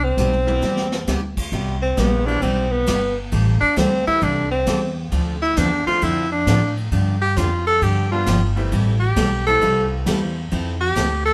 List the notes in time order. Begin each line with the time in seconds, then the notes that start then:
Already playing: C2
0.04 C4
0.17 B1 C3 G3 B3 E4 G4, hi-hat pedal, mid tom
0.33 mid tom
0.46 E3 G3 B3 C4 E4, mid tom
0.62 E2 C3 G3 B3 E4 G4, snare
0.77 snare
0.92 snare
1.07 D2 C3 G3 B3 E4 G4, snare, hi-hat pedal
1.37 kick, crash
1.52 C2 C3 G3 B3 E4 G4
1.82 C4
1.97 A#1 C3 G3 B3 E4 G4, snare, hi-hat pedal, ride
2.26 E3 G3 B3 C4 D4 E4, ride
2.42 B1 C3 G3 B3 C4 E4 G4, ride
2.71 B3
2.87 G1 C3 G3 B3 E4 G4, snare, hi-hat pedal, ride
3.32 A1 E3 G3 C4 E4 A4, ride
3.61 D4, muted upright bass stroke, kick
3.76 D2 E3 G3 C4 E4 A4, snare, hi-hat pedal, ride
4.07 E3 G3 A3 C4 E4, muted upright bass stroke, ride
4.21 C2 E3 G3 C4 D4 E4 A4, ride
4.52 C4
4.67 E2 E3 G3 C4 E4 A4, snare, hi-hat pedal, ride
5.12 D2 D3 F3 C4 D4 A4, ride
5.42 E4
5.56 E2 D3 F3 C4 D4 A4, snare, hi-hat pedal, ride
5.86 F3 A3 C4 D4 F4, muted upright bass stroke, ride
6.01 F2 D3 F3 C4 D4 E4 A4, ride
6.32 D4
6.46 A2 D3 F3 C4 D4 A4, snare, hi-hat pedal, ride
6.77 ride
6.92 G2 D3 F3 B3 D4 G4, ride
7.22 G4
7.36 F2 D3 F3 B3 D4 F4 G4, snare, hi-hat pedal, ride
7.66 A4, ride
7.82 G2 D3 F3 B3 D4 G4, ride
8.11 F3 G3 B3 D4 F4
8.26 G1 D3 F3 B3 D4 G4, snare, hi-hat pedal, ride
8.56 E3 G3 A3 C4 E4, ride
8.72 A1 E3 G3 C4 E4 A4, ride
9.00 G4
9.16 B1 E3 G3 C4 E4 A4, snare, hi-hat pedal, ride
9.47 E3 G3 A3 C4 E4 A4, ride
9.61 C2 E3 G3 C4 E4 A4, ride
10.05 E2 E3 G3 A3 C4 E4 G4 A4, snare, hi-hat pedal, ride
10.51 F2 F3 C4 E4 A4, ride
10.81 G4
10.96 D2 F3 C4 E4 A4, snare, hi-hat pedal, ride
11.26 A4, ride